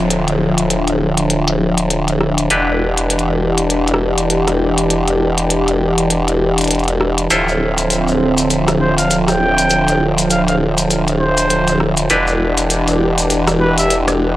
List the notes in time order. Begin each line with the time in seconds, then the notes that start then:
Already playing: D1 D3 F3 E4 F4 A4 C5, downlifter
0.10 D4, closed hi-hat
0.28 closed hi-hat
0.58 closed hi-hat
0.70 closed hi-hat
0.88 closed hi-hat
1.17 closed hi-hat
1.30 closed hi-hat
1.48 closed hi-hat
1.78 closed hi-hat
1.90 closed hi-hat
2.08 closed hi-hat
2.21 cross-stick
2.38 closed hi-hat
2.50 E1 E3 D4 E4 G4 B4, closed hi-hat
2.97 closed hi-hat
3.10 closed hi-hat
3.19 closed hi-hat
3.58 closed hi-hat
3.70 closed hi-hat
3.88 closed hi-hat
3.94 cross-stick
4.18 closed hi-hat
4.30 closed hi-hat
4.48 cross-stick, closed hi-hat
4.78 closed hi-hat
4.90 closed hi-hat
5.08 closed hi-hat
5.38 closed hi-hat
5.50 closed hi-hat
5.68 closed hi-hat
5.98 closed hi-hat
6.10 closed hi-hat
6.28 closed hi-hat
6.58 closed hi-hat
6.61 closed hi-hat
6.64 closed hi-hat
6.68 closed hi-hat
6.71 closed hi-hat
6.75 closed hi-hat
6.79 closed hi-hat
6.84 closed hi-hat
6.88 closed hi-hat
7.01 cross-stick
7.18 closed hi-hat
7.30 D1 D3 F3 C4 E4 F4 A4 C5, closed hi-hat, maracas
7.48 maracas
7.78 closed hi-hat, maracas
7.90 closed hi-hat, maracas
8.08 maracas
8.37 closed hi-hat, maracas
8.50 closed hi-hat, maracas
8.68 cross-stick, closed hi-hat, maracas
8.80 C5
8.98 F5, closed hi-hat, maracas
9.10 closed hi-hat, maracas
9.27 G5, cross-stick, closed hi-hat, maracas
9.58 closed hi-hat, maracas
9.70 closed hi-hat, maracas
9.88 closed hi-hat, maracas
10.18 closed hi-hat, maracas
10.30 F5, closed hi-hat, maracas
10.48 F5, closed hi-hat, maracas
10.78 closed hi-hat, maracas
10.90 closed hi-hat, maracas
11.08 closed hi-hat, maracas
11.20 C5
11.37 closed hi-hat, maracas
11.50 closed hi-hat, maracas
11.68 closed hi-hat, maracas
11.80 cross-stick
11.97 closed hi-hat, maracas
12.10 E1 E3 D4 E4 G4 B4, closed hi-hat, maracas
12.27 maracas
12.57 closed hi-hat, maracas
12.70 closed hi-hat, maracas
12.88 closed hi-hat, maracas
13.18 closed hi-hat, maracas
13.30 closed hi-hat, maracas
13.47 cross-stick, closed hi-hat, maracas
13.61 B4
13.78 E5, closed hi-hat, maracas
13.90 closed hi-hat, maracas
14.08 cross-stick, closed hi-hat, maracas